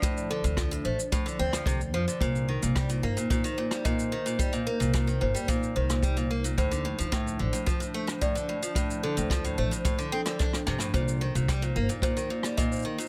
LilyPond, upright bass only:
\new Staff \with { instrumentName = "Upright bass" } { \clef bass \time 4/4 \key c \dorian \tempo 4 = 110 r8. d,8. a,,16 r8. d,4 f,16 r16 | c,8. c,8. g,,16 r2 r16 | r8. c,8. g,,16 r8. c,4. | d,8. d,8. a,,16 r2 r16 |
r8. d,8. a,,16 r4. r16 g,16 r16 | c,8. c,8. g,,16 r2 r16 | }